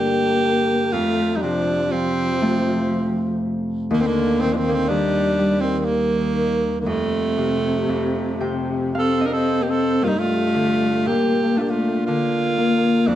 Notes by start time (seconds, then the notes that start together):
Already playing: G2 D3 A#3 D4 G4
0.92 F2 A3 F4
1.36 G3 D#4
1.41 C3 F3 D4
1.91 F3 C4
2.42 A3
3.91 D#2 D#3 A#3
3.99 D#3 C4
4.05 D3 A#3
4.40 A#2 D#3 C4
4.53 F3 C4 D4
4.57 D#3
4.69 D3 A#3 C4
4.73 D#3
4.88 D#3 G3 D4
5.39 G3
5.61 D#3 C4
5.79 D#3 C4
5.85 D#3 A#3
6.81 D3 A#3
6.86 F2 C3 A3
7.38 C3
7.89 F2
8.40 C3 G5
8.95 C4 A4 F5
9.21 D#5
9.26 D4 A#4
9.33 C4 A4
9.61 A#3 G4
9.67 C4 A4
10.02 G2 A#3 F4
10.07 G3 D#4
10.16 A3 F4
10.54 D3
11.05 A#2 A#3 G4
11.56 A3 D4 F4
11.61 A#3 G4
11.70 A3 F4
12.06 D3 A#3 F4
12.57 A#3
13.07 F2 F3 D4